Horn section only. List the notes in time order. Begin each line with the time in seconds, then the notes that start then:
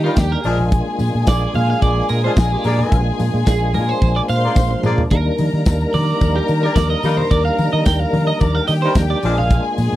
0.04 G3 A#3 D#4 A#4
0.44 F3 G#3 D4 G#4
2.24 F3 G#3 D4 G#4
2.65 A#3 D4 G#4 D5
4.44 A#3 D4 G#4 D5
4.84 A#3 D4 G#4 D5
6.63 A#3 D4 G4 D5
7.03 G3 A#3 D#4 A#4
8.83 G3 A#3 D#4 A#4
9.23 F3 G#3 D4 G#4